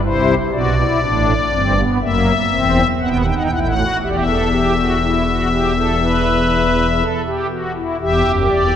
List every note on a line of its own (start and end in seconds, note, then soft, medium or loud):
0.04 0.34 C2 medium
0.04 0.34 C3 medium
0.04 0.34 E4 medium
0.04 0.35 C5 medium
0.53 0.84 B1 medium
0.53 0.84 B2 medium
0.53 0.74 F#4 medium
0.53 1.81 D5 medium
0.78 0.99 E4 medium
1.02 1.33 A1 medium
1.02 1.33 A2 medium
1.02 1.33 D4 medium
1.52 1.83 G1 medium
1.52 1.83 G2 medium
1.52 1.73 C4 medium
1.77 1.98 B3 medium
2.01 2.32 F#1 medium
2.01 2.32 F#2 medium
2.01 2.32 A#3 medium
2.01 2.87 E5 medium
2.51 2.82 E1 medium
2.51 2.82 E2 medium
2.51 2.82 C4 medium
3.00 3.32 D#1 medium
3.00 3.31 D#2 medium
3.00 3.22 B3 medium
3.00 3.09 F#5 medium
3.08 3.17 G5 medium
3.17 3.25 F#5 medium
3.26 3.48 D#4 medium
3.26 3.34 G5 medium
3.35 3.42 F#5 medium
3.43 3.51 G5 soft
3.51 3.83 A1 medium
3.51 3.83 A2 medium
3.51 3.73 E4 medium
3.51 3.59 F#5 medium
3.59 3.67 G5 medium
3.67 3.97 F#5 medium
3.77 3.98 F#4 medium
4.02 7.02 E1 medium
4.02 7.02 E2 medium
4.02 4.24 G4 medium
4.02 4.08 E5 medium
4.09 4.16 D5 medium
4.16 7.03 E5 medium
4.27 4.48 A4 medium
4.52 4.73 G4 medium
4.77 4.98 F#4 medium
5.02 5.23 E4 soft
5.27 5.48 F#4 soft
5.52 5.73 G4 medium
5.77 5.98 A4 soft
6.01 6.87 B4 medium
7.00 7.22 A4 medium
7.26 7.47 G4 soft
7.51 7.72 F#4 medium
7.75 7.97 E4 medium
8.01 8.22 E1 medium
8.01 8.22 E2 medium
8.01 8.76 G4 medium
8.01 8.31 E5 medium
8.25 8.47 F#1 medium
8.25 8.47 F#2 medium
8.50 8.71 E1 medium
8.50 8.71 E2 medium
8.50 8.76 D5 medium